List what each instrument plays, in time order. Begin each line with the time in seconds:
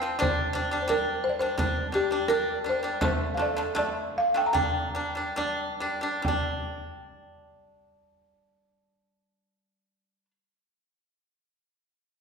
0.02 pipa F3 C4
0.19 pipa G3 D4, marimba C5, frame drum
0.53 pipa G3 D4
0.71 pipa G3 D4
0.82 marimba C5
0.88 pipa G3 D4, marimba A#4, frame drum
1.24 marimba C5, frame drum
1.29 marimba D5
1.39 pipa G3 D4, marimba C5
1.58 pipa G3 D4, frame drum
1.92 pipa G3 D4, marimba G4, frame drum
2.11 pipa G3 D4
2.28 pipa G3 D4, marimba A#4, frame drum
2.64 pipa G3 D4, frame drum
2.69 marimba C5
2.83 pipa G3 D4
3.01 pipa D3 A3, marimba C5, frame drum
3.34 pipa D3, marimba F5, frame drum
3.39 pipa A3, marimba D5
3.57 pipa D3 A3
3.75 pipa D3 A3, marimba D5, frame drum
4.16 marimba F5, frame drum
4.34 pipa D3 A3, marimba G5
4.46 marimba A#5
4.53 pipa G3 D4, marimba G5, frame drum
4.95 pipa G3 D4, frame drum
5.15 pipa G3 D4
5.36 pipa G3 D4, frame drum
5.80 pipa G3 D4, frame drum
6.01 pipa G3 D4
6.22 pipa G3, marimba G5, frame drum
6.28 pipa D4